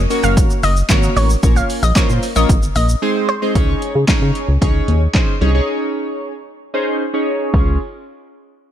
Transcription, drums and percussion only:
0.11 open hi-hat medium
0.11 shaker medium
0.23 shaker medium
0.37 kick loud
0.37 closed hi-hat medium
0.37 shaker medium
0.50 shaker soft
0.63 open hi-hat medium
0.63 shaker medium
0.77 shaker medium
0.89 kick loud
0.89 snare medium
0.89 clap loud
0.89 closed hi-hat medium
0.89 shaker medium
1.03 shaker medium
1.17 open hi-hat medium
1.17 shaker medium
1.30 shaker medium
1.43 kick loud
1.43 closed hi-hat medium
1.43 shaker medium
1.56 shaker medium
1.70 open hi-hat medium
1.70 shaker medium
1.83 shaker medium
1.95 kick loud
1.95 snare loud
1.95 clap loud
1.95 closed hi-hat medium
1.95 shaker medium
2.09 shaker medium
2.23 open hi-hat medium
2.23 shaker medium
2.36 shaker medium
2.49 kick loud
2.49 closed hi-hat medium
2.49 shaker medium
2.63 shaker medium
2.76 open hi-hat medium
2.76 shaker medium
2.89 shaker medium
3.55 kick loud
3.55 closed hi-hat medium
3.82 closed hi-hat medium
4.08 kick loud
4.08 snare medium
4.08 clap loud
4.08 closed hi-hat medium
4.35 closed hi-hat medium
4.62 kick loud
4.62 closed hi-hat medium
4.88 closed hi-hat medium
5.14 kick loud
5.14 snare medium
5.14 clap loud
5.14 closed hi-hat medium
5.42 closed hi-hat soft
7.54 kick loud
7.54 crash medium

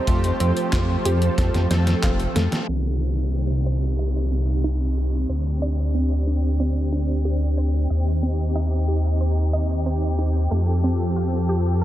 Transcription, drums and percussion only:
0.07 kick loud
0.07 closed hi-hat medium
0.24 closed hi-hat soft
0.40 closed hi-hat medium
0.57 closed hi-hat medium
0.73 kick loud
0.73 snare loud
0.73 clap loud
0.73 closed hi-hat medium
1.05 closed hi-hat medium
1.22 closed hi-hat medium
1.38 kick loud
1.38 snare medium
1.38 closed hi-hat medium
1.54 snare medium
1.54 closed hi-hat soft
1.71 snare medium
1.71 closed hi-hat medium
1.87 snare medium
1.87 closed hi-hat medium
2.03 kick loud
2.03 snare medium
2.03 clap loud
2.03 closed hi-hat medium
2.20 closed hi-hat soft
2.36 snare loud
2.36 closed hi-hat medium
2.52 snare medium
2.52 closed hi-hat medium
2.68 crash medium

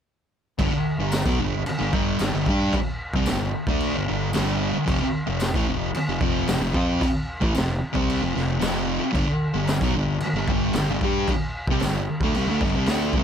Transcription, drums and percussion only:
0.59 kick loud
0.59 crash medium
1.12 snare loud
1.12 tambourine loud
1.12 crash medium
1.26 kick loud
1.66 crash medium
1.93 kick loud
2.19 snare loud
2.19 tambourine medium
2.19 crash medium
2.46 kick loud
2.73 kick loud
2.73 crash medium
3.14 kick loud
3.26 snare loud
3.26 tambourine loud
3.26 crash medium
3.67 kick loud
3.80 crash medium
4.33 snare loud
4.33 tambourine loud
4.33 crash medium
4.88 kick loud
4.88 crash medium
5.40 snare loud
5.40 tambourine loud
5.40 crash medium
5.54 kick loud
5.95 crash medium
6.21 kick loud
6.48 snare loud
6.48 tambourine loud
6.48 crash medium
6.74 kick loud
7.01 kick loud
7.01 crash medium
7.42 kick loud
7.55 snare loud
7.55 tambourine loud
7.55 crash medium
7.95 kick loud
8.10 crash medium
8.37 snare soft
8.61 snare loud
8.61 tambourine loud
8.61 crash medium
9.15 kick loud
9.15 crash medium
9.67 snare loud
9.67 tambourine loud
9.67 crash medium
9.81 kick loud
10.20 crash medium
10.48 kick loud
10.73 snare loud
10.73 tambourine loud
10.73 crash medium
11.01 kick loud
11.28 kick loud
11.28 crash medium
11.67 kick loud
11.80 snare loud
11.80 tambourine medium
11.80 crash medium
12.21 kick loud
12.35 crash medium
12.61 kick loud
12.61 snare soft
12.86 snare loud
12.86 tambourine medium
12.86 crash medium
13.13 kick loud

